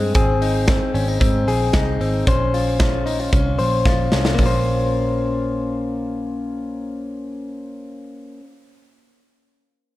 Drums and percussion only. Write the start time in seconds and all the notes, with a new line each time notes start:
0.15 kick, closed hi-hat
0.42 open hi-hat
0.68 kick, snare, closed hi-hat
0.95 open hi-hat
1.21 kick, closed hi-hat
1.48 open hi-hat
1.73 kick, snare, closed hi-hat
2.01 open hi-hat
2.27 kick, closed hi-hat
2.54 open hi-hat
2.80 kick, snare, closed hi-hat
3.07 open hi-hat
3.33 kick, closed hi-hat
3.59 open hi-hat
3.85 kick, snare
4.12 snare
4.25 snare
4.38 kick, open hi-hat